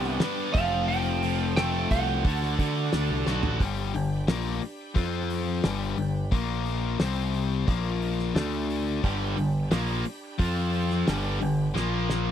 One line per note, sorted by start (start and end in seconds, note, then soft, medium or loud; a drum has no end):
0.00 0.17 C2 loud
0.00 0.18 G3 medium
0.00 0.55 G3 medium
0.00 0.18 B3 medium
0.00 0.55 B3 medium
0.00 0.19 D4 medium
0.00 0.21 D4 medium
0.00 0.51 D4 medium
0.00 0.51 G4 medium
0.00 0.55 G4 medium
0.00 0.18 B4 medium
0.00 0.51 B4 medium
0.00 0.17 G5 loud
0.00 snare soft
0.20 0.52 G3 medium
0.20 0.53 B3 loud
0.20 0.52 D4 medium
0.20 0.53 B4 medium
0.20 snare loud
0.20 open hi-hat medium
0.54 1.86 F1 medium
0.54 1.54 F3 medium
0.54 2.23 F3 medium
0.54 1.54 A3 loud
0.54 1.54 C4 loud
0.54 1.55 F4 loud
0.54 2.23 G4 medium
0.54 2.23 A4 medium
0.54 1.55 A4 loud
0.54 0.86 F5 loud
0.54 kick loud
0.54 open hi-hat medium
0.88 1.22 F3 medium
0.88 1.52 G5 loud
0.88 open hi-hat medium
1.23 2.25 F3 medium
1.23 open hi-hat medium
1.56 2.22 F3 medium
1.56 2.23 A3 medium
1.56 2.23 C4 medium
1.56 2.23 F4 medium
1.56 2.23 A4 medium
1.56 1.91 G5 loud
1.56 snare loud
1.56 open hi-hat medium
1.91 2.22 C2 medium
1.91 2.25 G4 medium
1.91 3.23 F#5 medium
1.91 kick medium
1.91 open hi-hat medium
2.24 2.55 D2 loud
2.24 3.24 D3 medium
2.24 3.59 D4 medium
2.24 3.24 D4 medium
2.24 3.59 F#4 medium
2.24 3.25 F#4 loud
2.24 3.59 A4 medium
2.24 3.25 A4 loud
2.24 kick loud
2.24 open hi-hat medium
2.43 snare soft
2.59 2.89 D3 loud
2.59 3.61 D3 medium
2.59 kick medium
2.59 open hi-hat medium
2.92 3.08 D2 medium
2.92 3.60 D4 medium
2.92 snare medium
2.92 open hi-hat medium
3.10 3.25 C2 medium
3.26 3.42 B1 medium
3.26 3.59 D3 medium
3.26 3.59 D4 medium
3.26 3.58 F#4 medium
3.26 3.58 A4 medium
3.26 snare medium
3.43 3.59 A1 medium
3.43 floor tom medium
3.60 3.92 G1 medium
3.60 3.93 G2 medium
3.60 3.93 D3 medium
3.60 3.93 G3 medium
3.60 4.95 D4 medium
3.60 4.95 G4 medium
3.60 4.95 B5 medium
3.60 kick loud
3.60 open hi-hat medium
3.94 4.26 G1 medium
3.94 4.21 G2 medium
3.94 4.21 D3 medium
3.94 open hi-hat medium
4.27 4.60 A#1 medium
4.27 4.61 A#2 medium
4.27 4.61 F3 medium
4.27 4.61 A#3 loud
4.27 snare loud
4.27 open hi-hat medium
4.61 muted overdriven electric guitar stroke soft
4.61 muted picked electric bass stroke soft
4.61 open hi-hat medium
4.95 5.60 F2 medium
4.95 5.62 F3 loud
4.95 5.63 C4 loud
4.95 5.63 C4 medium
4.95 5.63 F4 loud
4.95 5.63 F4 medium
4.95 5.63 C5 medium
4.95 kick medium
4.95 open hi-hat medium
5.30 open hi-hat medium
5.62 5.95 G1 medium
5.62 5.96 G2 medium
5.62 5.96 D3 loud
5.62 5.97 G3 loud
5.62 6.31 D4 medium
5.62 6.30 G4 medium
5.62 6.31 B4 medium
5.62 snare loud
5.62 open hi-hat medium
5.97 6.29 G1 medium
5.97 6.25 G2 medium
5.97 6.25 D3 medium
5.97 open hi-hat medium
6.31 6.96 A#1 medium
6.31 6.98 A#2 loud
6.31 6.99 F3 medium
6.31 6.99 A#3 medium
6.31 6.99 A#3 loud
6.31 6.99 F4 medium
6.31 6.99 A#4 medium
6.31 kick loud
6.31 open hi-hat medium
6.66 open hi-hat medium
7.00 7.64 C2 medium
7.00 7.66 C3 medium
7.00 7.67 G3 loud
7.00 7.67 C4 medium
7.00 7.67 C4 loud
7.00 7.67 G4 medium
7.00 7.67 C5 medium
7.00 snare loud
7.00 open hi-hat medium
7.34 open hi-hat medium
7.67 8.31 A#1 medium
7.67 8.34 A#2 loud
7.67 8.34 F3 loud
7.67 8.35 A#3 medium
7.67 8.35 F4 medium
7.67 8.35 A#4 medium
7.67 kick loud
7.67 open hi-hat medium
8.02 open hi-hat medium
8.19 snare soft
8.35 8.99 D2 loud
8.35 9.02 D3 loud
8.35 9.02 A3 loud
8.35 9.02 A3 medium
8.35 9.02 D4 medium
8.35 9.02 D4 loud
8.35 9.02 A4 medium
8.35 snare loud
8.35 open hi-hat medium
8.70 open hi-hat medium
9.03 9.35 G1 loud
9.03 9.35 G2 loud
9.03 9.36 D3 loud
9.03 9.36 G3 loud
9.03 10.38 D4 medium
9.03 10.38 G4 medium
9.03 10.38 B5 medium
9.03 kick loud
9.03 open hi-hat medium
9.37 9.69 G1 medium
9.37 9.64 G2 medium
9.37 9.64 D3 medium
9.37 open hi-hat medium
9.71 10.03 A#1 medium
9.71 10.04 A#2 loud
9.71 10.04 F3 loud
9.71 10.04 A#3 loud
9.71 snare loud
9.71 open hi-hat medium
10.04 muted overdriven electric guitar stroke medium
10.04 muted picked electric bass stroke soft
10.04 open hi-hat medium
10.38 11.03 F2 medium
10.38 11.05 F3 loud
10.38 11.06 C4 medium
10.38 11.06 C4 loud
10.38 11.06 F4 medium
10.38 11.06 F4 loud
10.38 11.06 C5 medium
10.38 kick loud
10.38 open hi-hat medium
10.73 open hi-hat medium
10.91 snare soft
11.06 11.39 G1 loud
11.06 11.39 G2 medium
11.06 11.39 D3 loud
11.06 11.40 G3 loud
11.06 11.74 D4 medium
11.06 11.73 G4 medium
11.06 11.74 B4 medium
11.06 snare loud
11.06 open hi-hat medium
11.40 11.73 G1 medium
11.40 11.67 G2 medium
11.40 11.68 D3 medium
11.40 open hi-hat medium
11.74 12.31 A#1 loud
11.74 12.31 A#2 medium
11.74 12.31 F3 loud
11.74 12.31 A#3 medium
11.74 12.31 F4 medium
11.74 12.31 A#4 medium
11.74 snare medium
12.10 snare medium